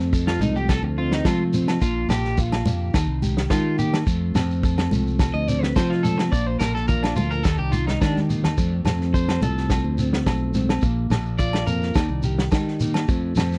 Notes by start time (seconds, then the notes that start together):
Already playing: F2 A3 C4
0.13 A4, kick, shekere
0.27 F4, snare, low agogo
0.39 C2 F3 A3 D#4, high conga, shekere
0.56 G4, shekere
0.69 A4, kick, snare, low agogo, shekere
0.82 D2, muted clean electric guitar stroke
0.98 C4 F4
1.12 D#4, snare
1.25 C3 F3 A3 F4, kick, snare, high conga, low agogo, shekere
1.54 C4, muted conga, high conga, shekere
1.68 snare, low agogo
1.81 A#1 A#2 F3 A#3 D4 F4, kick, muted conga, shekere
2.09 A#1 D4 G4, snare, muted conga, low agogo, shekere
2.24 snare, shekere
2.38 F4, kick, low conga, shekere
2.52 snare, low agogo
2.65 F2 F3 A#3, high conga, shekere
2.93 D#2 D#3 D#4, kick, snare, muted conga, low agogo, shekere
3.07 C2
3.22 G4, high conga, shekere
3.37 snare
3.50 D#3 D#4 F4, kick, snare, high conga, low agogo, shekere
3.78 A#3 D#4 G4, muted conga, shekere
3.93 snare, low agogo
4.06 F2 A3, kick, muted conga, shekere
4.34 F2 C4, snare, muted conga, low agogo, shekere
4.51 shekere
4.63 A4, kick, shekere
4.78 snare, low agogo
4.91 C2 F3 A3, high conga, shekere
5.07 shekere
5.19 kick, snare, low agogo, shekere
5.34 D2 D#5
5.48 C4 D5, shekere
5.62 B4, snare
5.76 C3 F3 A3 C5, kick, snare, high conga, low agogo, shekere
5.90 F4, snare
6.03 C4 A4, snare, muted conga, high conga, shekere
6.18 muted clean electric guitar stroke, snare, low agogo
6.32 A#1 A#2 A#3 D5, kick, muted conga, shekere
6.46 C5
6.59 A#1 D4 A#4, snare, muted conga, low agogo, shekere
6.75 A4, snare
6.88 F4 A#4, kick, low conga, shekere
7.03 D4, snare, low agogo
7.16 D2 F3 F4, high conga, shekere
7.31 A#4, shekere
7.44 D#2 D#3 D#4 A4, kick, snare, muted conga, low agogo, shekere
7.58 C2 G4
7.72 D#4 F4, high conga, shekere
7.87 D#4, snare, high conga
8.01 D#3 D4 G4, kick, snare, high conga, low agogo, shekere
8.16 snare, high conga
8.29 A#3 D#4, low conga, shekere
8.44 snare, low conga, low agogo, shekere
8.56 F2 A3, kick, muted conga, shekere
8.85 F2 C4, snare, muted conga, low agogo, shekere
9.01 snare, shekere
9.13 A4 C5, kick, shekere
9.28 snare, low agogo
9.40 C2 F3 A3 A4, high conga, shekere
9.57 snare, shekere
9.70 kick, snare, muted conga, low agogo, shekere
9.84 D2
9.98 C4, shekere
10.13 snare
10.26 B1 A3, kick, snare, high conga, low agogo, shekere
10.54 C4, snare, muted conga, high conga, shekere
10.69 snare, low agogo
10.82 A#1 A#2 A#3, kick, shekere
11.10 A#1 D4, snare, muted conga, low agogo, shekere
11.25 shekere
11.39 F4 D5, kick, low conga, shekere
11.53 snare, low agogo
11.67 F2 F3 A#3 A#4, shekere
11.81 snare, shekere
11.95 D#2 D#3 D#4, kick, snare, muted conga, low agogo, shekere
12.09 C2
12.23 G4, shekere
12.38 snare
12.51 D#3 G4, kick, snare, high conga, low agogo, shekere
12.67 snare
12.80 A#3 D#4, muted conga, shekere
12.94 snare, low agogo
13.08 F2 A3, kick, muted conga, shekere
13.36 F2 C4, snare, muted conga, low agogo, shekere
13.52 snare, shekere